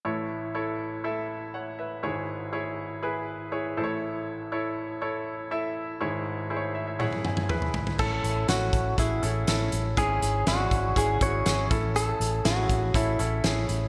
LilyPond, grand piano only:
<<
  \new Staff \with { instrumentName = "Grand piano" } { \time 4/4 \key a \major \tempo 4 = 121 << { r2. <cis'' fis''>8 <b' e''>8~ | <b' e''>8 r2. r8 | r1 | r4. e''16 e''16 fis''8 gis''8 b''8 b''8 |
r1 | r1 | r1 | } \\ { <e' a' cis''>4 <e' a' cis''>4 <e' a' e''>4 r4 | <e' gis' cis''>4 <e' gis' cis''>4 <e' gis' b'>4 <e' gis' cis''>8 <e' a' c'' cis''>8~ | <e' a' c'' cis''>4 <e' a' cis''>4 <e' a' cis''>4 <e' a' e''>4 | <e' gis' cis''>4 <e' gis' c'' cis''>4 <e' gis' cis''>4 <e' gis' b'>4 |
<cis' e' a'>4 <cis' e' fis'>4 <cis' e' gis'>8 <cis' e' a'>8 <cis' e' a'>4 | <cis' e' gis'>4 <cis' d' e' gis'>4 <cis' e' gis'>8 <cis' e' fis'>8 <cis' e' gis'>8 <cis' e' a'>8~ | <cis' e' a'>4 <cis' e' gis'>4 <cis' e' a'>8 <cis' e' a'>8 <cis' e' gis'>4 | } >> }
  \new Staff \with { instrumentName = "Grand piano" } { \clef bass \time 4/4 \key a \major <a,, a,>1 | <gis,, gis,>2.~ <gis,, gis,>8 <a,, a,>8~ | <a,, a,>2.~ <a,, a,>8 r8 | <gis,, gis,>1 |
a,4. r2 r8 | gis,4. r2 a,8~ | a,4 r2. | }
>>